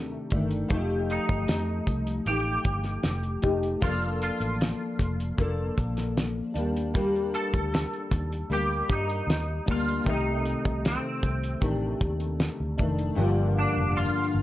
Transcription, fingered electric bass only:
Already playing: D#2
0.32 G1
0.70 F1
1.29 G1
1.48 F2
1.87 C2
2.26 A1
2.65 G1
3.04 F1
3.44 F1
3.82 F1
4.40 A1
4.99 F1
5.38 F1
5.77 A#1
6.55 D#2
7.53 D2
8.11 D#2
8.50 D2
8.90 G2
9.27 D#2
9.68 D2
10.06 C2
10.65 C2
11.23 C2
11.61 A1
12.01 D#2
12.60 D2
12.79 F1
13.18 G1
13.77 F1
14.34 G1

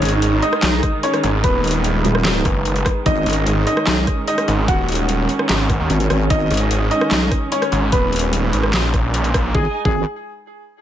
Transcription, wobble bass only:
0.63 B1
2.05 D#1
3.06 G#1
3.87 B1
5.90 G#1
6.10 G#1
6.30 G#1
7.11 B1
9.55 G#1
9.85 G#1

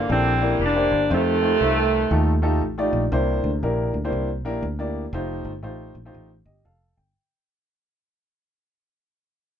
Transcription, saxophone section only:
Already playing: D3
0.09 E3 G3 C4
0.61 G3 A#3 D4
1.12 C3 D#3 A3

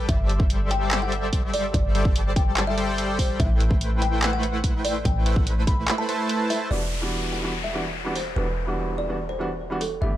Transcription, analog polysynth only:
0.09 G3 G4 A4 C5 E5
0.91 G3 G4 A4 C5 D5 E5
1.43 G3 G4 A4 C5 D5 E5
1.95 G3 G4 A4 C5 D5 E5
2.05 G3 A4 E5
2.15 G3 G4 A4 C5 D5 A5
2.78 G3 G4 A4 C5 D5 G5
3.40 E4
4.22 A3 E4 B4 C5 F#5
4.74 A3 E4 B4 C5 G5
5.26 A3 E4 B4 C5 G5
5.36 A3 E4 B4 C5 F#5
5.47 A3 E4 B4 C5 B5
6.09 A3 E4 B4 C5 A5

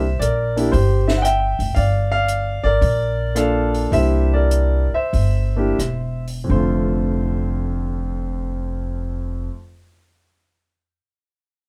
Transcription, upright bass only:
Already playing: C2
0.20 A#1
0.73 G1
1.59 F1
1.76 G1
2.64 G#1
2.81 A#1
3.92 C2
4.92 muted upright bass stroke
5.13 G1
5.79 E1
6.50 F1

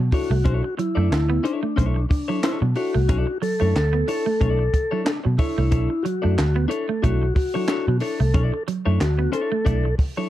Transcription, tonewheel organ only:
0.13 F#4
0.79 E4
1.44 D4
2.10 D4
2.44 E4
2.76 F#4
3.42 A4
5.05 D4
5.38 E4
6.03 F#4
6.70 A4
7.02 F#4
7.35 F#4
8.01 A4
9.01 F#4
9.34 A4

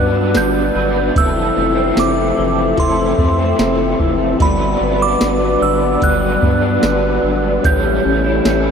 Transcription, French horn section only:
Already playing: B3 F#4 B4 D5
1.16 C4 E4 A4 E5
4.39 B3 F#4 B4 D5
7.64 A3 E4 G4 C#5

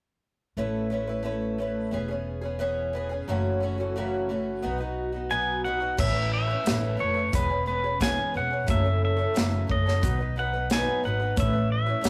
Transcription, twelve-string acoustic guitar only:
0.57 A3 C#4 E4 B4
0.90 A3 C#4 E4 B4
1.07 C#4 E4 B4
1.23 A3 C#4 E4 B4
1.58 A3 C#4 E4 B4
1.91 E3 B3 C#4 G#4
2.08 C#4 G#4
2.13 B3
2.41 B3 C#4 G#4
2.59 E3 B3 C#4 G#4
2.93 E3 B3 C#4 G#4
3.09 B3 C#4 G#4
3.28 F#2 C#3 E3 A3 C#4 F#4
3.60 E3 A3 C#4 F#4
3.78 E3 A3 C#4 F#4
3.96 F#2 C#3 E3 A3 C#4 F#4
4.29 E3 A3 C#4 F#4
4.62 B2 F#3 B3 D#4 F#4
4.78 B3 D#4 F#4
5.12 B3 D#4 F#4
5.30 B2 F#3 B3 D#4 F#4
5.65 F#3 B3 D#4 F#4
5.80 B3 D#4 F#4
5.97 A3 C#4 E4 B4
6.13 C#4 E4 B4
6.48 C#4 E4 B4
6.64 A3 C#4 E4 B4
6.97 A3 C#4 E4 B4
7.14 E4 B4
7.19 C#4
7.32 E3 G#3 B3 C#4 G#4
7.49 B3 C#4 G#4
7.66 G#3 B3 C#4 G#4
7.84 B3 C#4 G#4
8.00 E3 G#3 B3 C#4 G#4
8.34 G#3 B3 C#4 G#4
8.50 B3 C#4 G#4
8.67 F#2 C#3 E3 A3 C#4 A4
8.84 E3 A3 C#4 A4
9.17 A3 C#4 A4
9.21 E3
9.34 F#2 C#3 E3 A3 C#4 A4
9.67 E3 A3 C#4 A4
9.86 E3 A3 C#4 A4
10.01 B2 F#3 B3 D#4 B4
10.18 B3 D#4 B4
10.36 F#3 B3 D#4 B4
10.53 B3 D#4 B4
10.70 B2 F#3 B3 D#4 B4
11.04 F#3 B3 D#4 B4
11.20 B3 D#4 B4
11.36 A3 C#4 E4 B4
11.53 E4 B4
11.57 C#4
11.86 C#4 E4 B4
12.01 A3 C#4 E4 B4

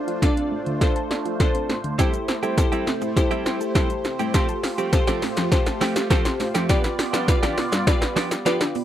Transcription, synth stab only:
0.22 D4 F4 A4 D5
0.81 D4 F4 A4 C5
1.40 D4 F4 A4 C5
1.99 E4 G4 A4 C5
2.58 E4 G4 A4 C5
3.17 E4 G4 A4 C5
3.75 E4 G4 A4 C5
4.34 F4 G4 A4 C5
4.93 F4 G4 A4 C5
5.52 F4 G4 A4 C5
6.10 F4 G4 A4 C5
6.69 F4 G4 B4 D5
7.28 F4 G4 B4 D5
7.87 F4 G4 B4 D5
8.46 F4 G4 B4 D5

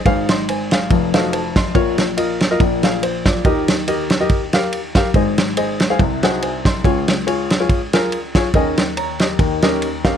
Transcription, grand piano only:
0.06 G#1 G#2 G#4 C5 F5
0.30 D#5 C6
0.49 C5 G#5
0.72 G#4 F5
0.90 F1 F2
1.14 D#4 F#4 A4 C5 F5
1.33 C5 A5
1.57 D#5 C6
1.75 A#1 A#2 F4 A#4 C#5
2.17 F4 A#4 D#5
2.51 F4 A#4 D#5
2.60 A#1 A#2
2.84 G#4 F5
3.03 C5
3.26 F4 D5
3.45 D#2 D#3 G4 A#4 D#5
3.88 G4 A#4 D#5
4.20 G4 A#4 D#5
4.54 G4 A#4 F5
4.96 G4 A#4 F5
5.15 G#1 G#2 G#4 C5 D#5
5.57 G#4 C5 D#5
5.90 G#4 C5 F5
5.99 C2 C3
6.24 D#4 F#4 G#4 C5 F#5
6.42 C5 G#5
6.66 D#5 C6
6.85 C#2 C#3 F4 G#4 C#5
7.27 F4 G#4 C#5
7.60 F4 G#4 C#5
7.93 F4 G#4 A#4
8.35 F4 G#4 C#5
8.55 D#2 D#3 C#4 D#4 G#4 A#4 D#5
8.97 C#5 A#5
9.21 G4 D#5
9.39 D#2 D#3
9.63 C#4 D#4 G4 A#4 D#5
10.04 C#4 D#4 G4 A#4 F5

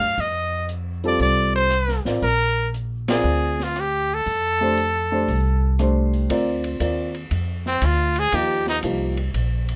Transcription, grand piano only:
1.04 G3 C4 F4 A4
2.06 C4 F4 A#4 D5
3.08 C4 F4 A#4 D5
4.61 A3 D4 G4 C5
5.12 A3 D4 G4 C5
5.79 A3 D4 G4 C5
6.29 C4 F4 A#4 D5
6.80 C4 F4 A#4 D5
8.33 F3 A#3 D#4 G4
8.83 F3 A#3 D#4 G4

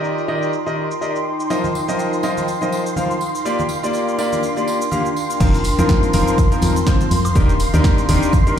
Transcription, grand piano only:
Already playing: D#3 G4 A#4 D5 D#5
0.28 D#3 G4 A#4 D5 D#5
0.66 D#3 G4 A#4 D5 D#5
1.01 G4 A#4 D5 D#5
1.50 F3 F4 A#4 C5 D#5
1.88 F3 F4 A#4 C5 D#5
2.23 F3 F4 A#4 C5 D#5
2.62 F3 F4 A#4 C5 D#5
2.97 F3 F4 A#4 C5 F5
3.45 A#3 F4 G4 A#4 D5
3.83 A#3 F4 G4 A#4 D5
4.18 A#3 F4 G4 A#4 D5
4.57 A#3 F4 G4 A#4 D5
4.92 A#3 F4 G4 A#4 F5
5.40 F3 C4 D#4 F4 A#4
5.79 F3 C4 D#4 F4 A#4
6.14 F3 C4 D#4 F4 A#4
6.52 F3 C4 D#4 F4 A#4
6.87 F3 C4 D#4 F4 C5
7.36 D#3 D4 D#4 G4 A#4
7.74 D#3 D4 D#4 G4 A#4
8.09 D#3 D4 D#4 G4 A#4
8.47 D#3 D4 D#4 G4 A#4

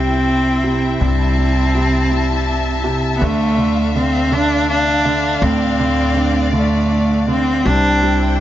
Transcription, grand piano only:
Already playing: C3 G3
0.64 C3
1.00 G2
1.38 G3
1.75 C3
2.11 G3
2.84 C3
3.21 D3
3.58 D3
3.96 D3
4.31 D3
5.05 D3
5.42 A2
5.79 D3
6.16 D3
6.53 D3
7.27 D3
7.65 C3
8.02 G3

